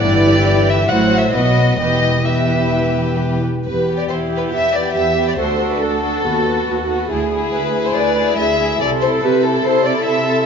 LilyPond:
<<
  \new Staff \with { instrumentName = "Violin section" } { \time 4/4 \key e \minor \tempo 4 = 139 d''4. e''8 \tuplet 3/2 { fis''4 e''8 } dis''4 | dis''4 e''2 r4 | b'8. d''16 \tuplet 3/2 { c''4 b'8 } e''8 d''8 e''8. d''16 | c''8. b'16 a'2. |
r4 b'8. c''16 d''4 e''4 | d''8 c''8 b'8 a'8 c''8 d''8 e''4 | }
  \new Staff \with { instrumentName = "Viola section" } { \time 4/4 \key e \minor <e e'>2 <fis e'>4 <fis b>4 | <e b>4 <e b>2~ <e b>8 r8 | g'4 e'4 g'2 | a'2 fis'4 fis'4 |
gis'2 b'4 gis'4 | a'4 g'4 a'4 a'4 | }
  \new Staff \with { instrumentName = "Violin section" } { \time 4/4 \key e \minor <g' b'>2 <fis' c''>4 <fis' b'>4 | <g' b'>4 <g' b'>2~ <g' b'>8 r8 | r8 <b g'>4 <b g'>4 <b g'>4 <b g'>8 | <d' fis'>8 <d' fis'>4 <d' fis'>8 <b fis'>8 <b fis'>4 <b fis'>8 |
<e' gis'>8 <e' gis'>4 <e' gis'>4 <e' gis'>4 <e' gis'>8 | r8 <e' a'>4 <e' a'>4 <e' a'>4 <e' a'>8 | }
  \new Staff \with { instrumentName = "Cello section" } { \clef bass \time 4/4 \key e \minor g,2 a,4 b,4 | e,2.~ e,8 r8 | e,4 e,4 e,4 e,4 | d,4 d,4 dis,4 dis,4 |
d,4 d,4 d,4 d,4 | c4 c4 c4 c4 | }
  \new Staff \with { instrumentName = "Double bass section" } { \clef bass \time 4/4 \key e \minor g,,2 a,,4 b,,4 | e,,2.~ e,,8 r8 | e,,4 r2. | d,4 r4 dis,4 r4 |
d,4 r2. | c,4 r2. | }
>>